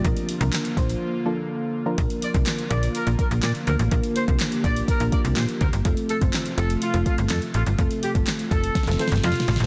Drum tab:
HH |x--x--x--x--x--x--x--x--------------------------|x--x--x--x--x--x--x--x--x--x--x--x--x--x--x--x--|x--x--x--x--x--x--x--x--x--x--x--x--x--x--x--x--|x--x--x--x--x--x--x--x--x--x--x--x--x--x--x--x--|
CP |------------x-----------------------------------|------------x-----------------------x-----------|------------x-----------------------x-----------|------------x-----------------------x-----------|
SD |------------o-----------------------------------|------------o-----------------------o-----------|------------o-----------------------o-----------|------------o-----------------------o-----------|
BD |o-----------------o-----------------------------|o--------o--------------------o-----------------|o--------o--------o-----o-----o-----------o-----|o--------o--------------------o-----------------|

HH |x--x--x--x--x--x--x--x--x--x--x--x--x--x--o--x--|
CP |------------x-----------------------------------|
SD |------------o-----------o-o-o-o-o-o-o-o-o-o-o---|
BD |o--------o--------o-----o-----------------------|